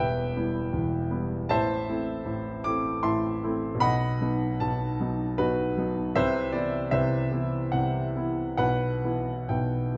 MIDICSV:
0, 0, Header, 1, 2, 480
1, 0, Start_track
1, 0, Tempo, 767263
1, 942, Time_signature, 3, 2, 24, 8
1, 1902, Tempo, 780234
1, 4302, Tempo, 804290
1, 4782, Tempo, 857143
1, 5262, Tempo, 899550
1, 5992, End_track
2, 0, Start_track
2, 0, Title_t, "Grand piano"
2, 0, Program_c, 0, 0
2, 0, Control_c, 0, 64, 127
2, 0, Note_on_c, 0, 28, 64
2, 0, Note_on_c, 0, 40, 59
2, 0, Note_on_c, 0, 55, 49
2, 0, Note_on_c, 0, 59, 49
2, 0, Note_on_c, 0, 64, 59
2, 0, Note_on_c, 0, 67, 76
2, 0, Note_on_c, 0, 71, 74
2, 0, Note_on_c, 0, 76, 72
2, 0, Note_on_c, 0, 79, 95
2, 216, Note_off_c, 0, 28, 0
2, 217, Note_off_c, 0, 40, 0
2, 229, Note_off_c, 0, 59, 0
2, 229, Note_on_c, 0, 59, 53
2, 230, Note_off_c, 0, 55, 0
2, 230, Note_on_c, 0, 55, 54
2, 232, Note_off_c, 0, 64, 0
2, 232, Note_on_c, 0, 64, 62
2, 436, Note_off_c, 0, 71, 0
2, 437, Note_off_c, 0, 76, 0
2, 439, Note_off_c, 0, 55, 0
2, 439, Note_off_c, 0, 59, 0
2, 441, Note_off_c, 0, 64, 0
2, 456, Note_on_c, 0, 28, 63
2, 457, Note_on_c, 0, 40, 65
2, 458, Note_off_c, 0, 79, 0
2, 691, Note_off_c, 0, 28, 0
2, 691, Note_off_c, 0, 40, 0
2, 694, Note_on_c, 0, 55, 53
2, 694, Note_on_c, 0, 59, 58
2, 698, Note_on_c, 0, 64, 55
2, 915, Note_off_c, 0, 55, 0
2, 915, Note_off_c, 0, 59, 0
2, 917, Note_off_c, 0, 64, 0
2, 934, Note_on_c, 0, 81, 115
2, 938, Note_on_c, 0, 45, 74
2, 939, Note_on_c, 0, 33, 67
2, 942, Note_on_c, 0, 76, 93
2, 943, Note_on_c, 0, 72, 85
2, 952, Control_c, 0, 64, 0
2, 955, Note_off_c, 0, 67, 0
2, 1053, Control_c, 0, 64, 127
2, 1172, Note_off_c, 0, 33, 0
2, 1172, Note_off_c, 0, 45, 0
2, 1179, Note_on_c, 0, 60, 59
2, 1181, Note_on_c, 0, 57, 51
2, 1184, Note_on_c, 0, 64, 62
2, 1394, Note_off_c, 0, 60, 0
2, 1395, Note_off_c, 0, 57, 0
2, 1397, Note_off_c, 0, 64, 0
2, 1409, Note_on_c, 0, 45, 62
2, 1410, Note_on_c, 0, 33, 66
2, 1634, Note_off_c, 0, 76, 0
2, 1635, Note_off_c, 0, 72, 0
2, 1647, Note_off_c, 0, 33, 0
2, 1647, Note_off_c, 0, 45, 0
2, 1653, Note_on_c, 0, 86, 113
2, 1655, Note_off_c, 0, 81, 0
2, 1660, Note_on_c, 0, 57, 53
2, 1664, Note_on_c, 0, 60, 60
2, 1664, Note_on_c, 0, 64, 66
2, 1878, Note_off_c, 0, 57, 0
2, 1880, Note_off_c, 0, 64, 0
2, 1881, Note_off_c, 0, 60, 0
2, 1895, Note_on_c, 0, 84, 94
2, 1897, Note_on_c, 0, 45, 61
2, 1898, Note_on_c, 0, 33, 65
2, 1899, Note_off_c, 0, 86, 0
2, 1899, Note_on_c, 0, 81, 69
2, 1900, Note_on_c, 0, 76, 71
2, 2135, Note_off_c, 0, 45, 0
2, 2136, Note_off_c, 0, 33, 0
2, 2144, Note_on_c, 0, 57, 61
2, 2147, Note_on_c, 0, 60, 61
2, 2149, Note_on_c, 0, 64, 58
2, 2338, Note_on_c, 0, 47, 72
2, 2362, Note_off_c, 0, 81, 0
2, 2363, Note_off_c, 0, 57, 0
2, 2363, Note_off_c, 0, 76, 0
2, 2365, Note_off_c, 0, 60, 0
2, 2366, Note_off_c, 0, 64, 0
2, 2371, Note_on_c, 0, 83, 119
2, 2379, Note_on_c, 0, 35, 70
2, 2380, Note_on_c, 0, 78, 94
2, 2383, Note_on_c, 0, 75, 85
2, 2385, Note_off_c, 0, 84, 0
2, 2400, Control_c, 0, 64, 0
2, 2481, Control_c, 0, 64, 127
2, 2594, Note_off_c, 0, 47, 0
2, 2615, Note_off_c, 0, 35, 0
2, 2621, Note_on_c, 0, 54, 53
2, 2626, Note_on_c, 0, 63, 62
2, 2627, Note_on_c, 0, 59, 58
2, 2837, Note_off_c, 0, 78, 0
2, 2839, Note_off_c, 0, 54, 0
2, 2839, Note_off_c, 0, 75, 0
2, 2841, Note_off_c, 0, 63, 0
2, 2842, Note_off_c, 0, 59, 0
2, 2857, Note_off_c, 0, 83, 0
2, 2863, Note_on_c, 0, 81, 99
2, 2867, Note_on_c, 0, 47, 62
2, 2868, Note_on_c, 0, 35, 64
2, 3099, Note_off_c, 0, 47, 0
2, 3100, Note_off_c, 0, 35, 0
2, 3109, Note_on_c, 0, 54, 60
2, 3112, Note_on_c, 0, 59, 58
2, 3115, Note_on_c, 0, 63, 62
2, 3321, Note_off_c, 0, 54, 0
2, 3323, Note_off_c, 0, 59, 0
2, 3325, Note_off_c, 0, 63, 0
2, 3342, Note_off_c, 0, 81, 0
2, 3342, Note_on_c, 0, 71, 97
2, 3347, Note_on_c, 0, 35, 64
2, 3347, Note_on_c, 0, 47, 63
2, 3348, Note_on_c, 0, 63, 69
2, 3348, Note_on_c, 0, 66, 73
2, 3576, Note_off_c, 0, 35, 0
2, 3576, Note_off_c, 0, 47, 0
2, 3583, Note_off_c, 0, 63, 0
2, 3584, Note_on_c, 0, 54, 60
2, 3588, Note_on_c, 0, 59, 59
2, 3592, Note_on_c, 0, 63, 60
2, 3798, Note_off_c, 0, 54, 0
2, 3799, Note_off_c, 0, 66, 0
2, 3801, Note_off_c, 0, 59, 0
2, 3803, Note_off_c, 0, 63, 0
2, 3813, Note_off_c, 0, 71, 0
2, 3818, Note_on_c, 0, 76, 115
2, 3820, Note_on_c, 0, 36, 73
2, 3822, Note_on_c, 0, 48, 82
2, 3822, Note_on_c, 0, 71, 80
2, 3824, Note_on_c, 0, 72, 90
2, 3833, Control_c, 0, 64, 0
2, 3943, Control_c, 0, 64, 127
2, 4044, Note_off_c, 0, 71, 0
2, 4045, Note_off_c, 0, 72, 0
2, 4046, Note_on_c, 0, 74, 96
2, 4049, Note_on_c, 0, 52, 62
2, 4052, Note_off_c, 0, 36, 0
2, 4053, Note_off_c, 0, 48, 0
2, 4053, Note_on_c, 0, 59, 55
2, 4054, Note_on_c, 0, 64, 63
2, 4059, Note_off_c, 0, 76, 0
2, 4270, Note_off_c, 0, 52, 0
2, 4272, Note_off_c, 0, 59, 0
2, 4273, Note_off_c, 0, 64, 0
2, 4285, Note_on_c, 0, 76, 102
2, 4289, Note_on_c, 0, 36, 65
2, 4289, Note_on_c, 0, 48, 70
2, 4293, Note_off_c, 0, 74, 0
2, 4293, Note_on_c, 0, 71, 72
2, 4294, Note_on_c, 0, 72, 70
2, 4525, Note_off_c, 0, 36, 0
2, 4525, Note_off_c, 0, 48, 0
2, 4526, Note_on_c, 0, 52, 58
2, 4527, Note_on_c, 0, 59, 53
2, 4532, Note_on_c, 0, 64, 62
2, 4751, Note_off_c, 0, 52, 0
2, 4751, Note_off_c, 0, 59, 0
2, 4753, Note_off_c, 0, 71, 0
2, 4754, Note_off_c, 0, 64, 0
2, 4754, Note_off_c, 0, 72, 0
2, 4765, Note_on_c, 0, 78, 88
2, 4772, Note_on_c, 0, 36, 62
2, 4772, Note_on_c, 0, 48, 63
2, 4773, Note_off_c, 0, 76, 0
2, 5004, Note_off_c, 0, 36, 0
2, 5004, Note_off_c, 0, 48, 0
2, 5010, Note_on_c, 0, 52, 52
2, 5013, Note_on_c, 0, 59, 53
2, 5015, Note_on_c, 0, 64, 61
2, 5235, Note_off_c, 0, 52, 0
2, 5237, Note_off_c, 0, 59, 0
2, 5238, Note_off_c, 0, 64, 0
2, 5238, Note_off_c, 0, 78, 0
2, 5246, Note_on_c, 0, 78, 101
2, 5249, Note_on_c, 0, 35, 71
2, 5250, Note_on_c, 0, 47, 72
2, 5251, Note_on_c, 0, 71, 89
2, 5271, Control_c, 0, 64, 0
2, 5355, Control_c, 0, 64, 127
2, 5490, Note_off_c, 0, 35, 0
2, 5490, Note_off_c, 0, 47, 0
2, 5495, Note_on_c, 0, 52, 53
2, 5499, Note_on_c, 0, 59, 52
2, 5499, Note_on_c, 0, 64, 58
2, 5718, Note_off_c, 0, 71, 0
2, 5719, Note_off_c, 0, 52, 0
2, 5720, Note_off_c, 0, 64, 0
2, 5721, Note_off_c, 0, 59, 0
2, 5734, Note_on_c, 0, 79, 74
2, 5736, Note_on_c, 0, 35, 63
2, 5737, Note_off_c, 0, 78, 0
2, 5738, Note_on_c, 0, 47, 57
2, 5741, Note_on_c, 0, 76, 51
2, 5742, Note_on_c, 0, 71, 53
2, 5970, Note_off_c, 0, 35, 0
2, 5971, Note_off_c, 0, 47, 0
2, 5992, Note_off_c, 0, 71, 0
2, 5992, Note_off_c, 0, 76, 0
2, 5992, Note_off_c, 0, 79, 0
2, 5992, End_track
0, 0, End_of_file